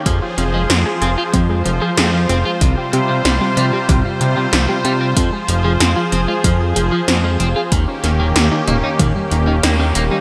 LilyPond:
<<
  \new Staff \with { instrumentName = "Synth arpeggio sound" } { \time 4/4 \key f \minor \tempo 4 = 94 aes'16 f'16 c'16 aes16 f16 aes'16 aes'16 f'16 c'16 aes16 f16 aes'16 aes'16 f'16 c'16 aes16 | f16 g'16 g'16 f'16 c'16 g16 f16 g'16 g'16 f'16 c'16 g16 f16 g'16 g'16 f'16 | c'16 aes16 f16 aes'16 aes'16 f'16 c'16 aes16 f16 aes'16 aes'16 f'16 c'16 aes16 f16 aes'16 | ees'16 des'16 bes16 g16 ees16 ees'16 ees'16 des'16 bes16 g16 ees16 ees'16 ees'16 des'16 bes16 g16 | }
  \new Staff \with { instrumentName = "Analog synth pad" } { \time 4/4 \key f \minor << { c''1~ | c''1~ | c''1 | g'1 | } \\ { <f f' aes'>1 | <c g>1 | <f aes'>1 | <ees bes des'>1 | } >> }
  \new Staff \with { instrumentName = "Clean electric guitar" } { \clef bass \time 4/4 \key f \minor f16 r16 f16 f16 c'16 f16 c'16 f'16 f16 r16 f16 f16 c'16 f16 c'16 f'16 | c16 r16 c16 c16 g16 c16 g16 c'16 c16 r16 c16 c16 g16 c16 g16 c'16 | f16 r16 f16 f16 c'16 f16 c'16 f'16 f16 r16 f16 f16 c'16 f16 c'16 f'16 | ees16 r16 ees16 ees16 bes16 ees16 bes16 ees'16 ees16 r16 ees16 ees16 bes16 ees16 bes16 ees'16 | }
  \new Staff \with { instrumentName = "Analog synth bass" } { \clef bass \time 4/4 \key f \minor f,8 f,,8 f,8 f,,8 f,8 f,,8 f,8 f,,8 | c,8 c8 c,8 c8 c,8 c8 c,8 c8 | f,8 f,,8 f,8 f,,8 f,8 f,,8 f,8 f,,8 | ees,8 ees,,8 ees,8 ees,,8 ees,8 ees,,8 ees,8 ees,,8 | }
  \new DrumStaff \with { instrumentName = "Drums" } \drummode { \time 4/4 <hh bd>8 hh8 <hh sn>8 hh8 <hh bd>8 hh8 <hh sn>8 hh8 | <hh bd>8 hh8 <hh sn>8 hh8 <hh bd toml>8 hh8 <hh sn>8 hh8 | <hh bd>8 hh8 <hh sn>8 hh8 <hh bd>8 hh8 <hh sn>8 hh8 | <hh bd>8 <hh sn>8 <hh sn>8 <hh toml>8 <hh bd toml>8 hh8 <hh sn>8 hh8 | }
>>